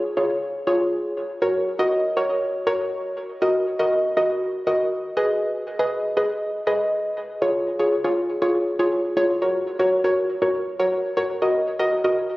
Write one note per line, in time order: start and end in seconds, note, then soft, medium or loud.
0.17 0.48 F4 medium
0.17 0.48 G#4 medium
0.17 0.48 C#5 loud
0.67 1.14 F4 medium
0.67 1.14 G#4 medium
0.67 1.14 C#5 loud
1.42 1.65 F#4 medium
1.42 1.65 A#4 medium
1.42 1.65 C#5 medium
1.79 2.03 F#4 medium
1.79 2.03 A#4 medium
1.79 2.03 D#5 loud
2.17 2.48 F#4 medium
2.17 2.48 A#4 medium
2.17 2.48 C#5 loud
2.67 3.14 F#4 medium
2.67 3.14 A#4 medium
2.67 3.14 C#5 loud
3.42 3.65 F#4 medium
3.42 3.65 A#4 medium
3.42 3.65 D#5 loud
3.79 4.03 F#4 medium
3.79 4.03 A#4 medium
3.79 4.03 D#5 loud
4.17 4.48 F#4 medium
4.17 4.48 A#4 medium
4.17 4.48 D#5 loud
4.67 5.14 F#4 medium
4.67 5.14 A#4 medium
4.67 5.14 D#5 loud
5.17 5.67 G#4 medium
5.17 5.67 B4 medium
5.17 5.67 D#5 loud
5.79 6.03 G#4 medium
5.79 6.03 B4 medium
5.79 6.03 D#5 loud
6.17 6.48 G#4 medium
6.17 6.48 B4 medium
6.17 6.48 D#5 loud
6.67 7.14 G#4 medium
6.67 7.14 B4 medium
6.67 7.14 D#5 loud
7.42 7.65 F4 medium
7.42 7.65 G#4 medium
7.42 7.65 C#5 loud
7.79 7.95 F4 medium
7.79 7.95 G#4 medium
7.79 7.95 C#5 loud
8.04 8.28 F4 medium
8.04 8.28 G#4 medium
8.04 8.28 C#5 loud
8.42 8.65 F4 medium
8.42 8.65 G#4 medium
8.42 8.65 C#5 loud
8.79 9.03 F4 medium
8.79 9.03 G#4 medium
8.79 9.03 C#5 loud
9.17 9.32 F4 medium
9.17 9.33 G#4 medium
9.17 9.33 C#5 loud
9.42 9.65 F#4 medium
9.42 9.65 A#4 medium
9.42 9.65 C#5 loud
9.79 9.95 F#4 medium
9.79 9.95 A#4 medium
9.79 9.95 C#5 loud
10.04 10.28 F#4 medium
10.04 10.28 A#4 medium
10.04 10.28 C#5 loud
10.42 10.65 F#4 medium
10.42 10.65 A#4 medium
10.42 10.65 C#5 loud
10.79 11.03 F#4 medium
10.79 11.03 A#4 medium
10.79 11.03 C#5 loud
11.17 11.33 F#4 medium
11.17 11.33 A#4 medium
11.17 11.33 C#5 loud
11.42 11.65 F#4 medium
11.42 11.65 A#4 medium
11.42 11.65 D#5 loud
11.79 11.95 F#4 medium
11.79 11.95 A#4 medium
11.79 11.95 D#5 loud
12.04 12.28 F#4 medium
12.04 12.28 A#4 medium
12.04 12.28 D#5 loud